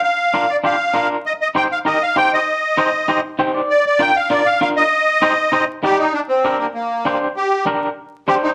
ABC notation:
X:1
M:4/4
L:1/8
Q:1/4=196
K:Cm
V:1 name="Accordion"
f3 d f3 z | e e g f e f g e- | e4- e z3 | d d g f d f f e- |
e4- e z G E | D C2 B, B,3 z | G2 z4 G E |]
V:2 name="Clean electric guitar"
z2 [DFB] z [DFG] z [DFB] z | z2 [EGc] z [EGB] z [EGc] z | z2 [EGc] z [EGc] z [EGcg] d | z2 [DFB] z [DFB] z [DFB] z |
z2 [EGc] z [EGc] z [EGd] z | z2 [DGB] z3 [DGc] z | z2 [DGB] z3 [DGc] z |]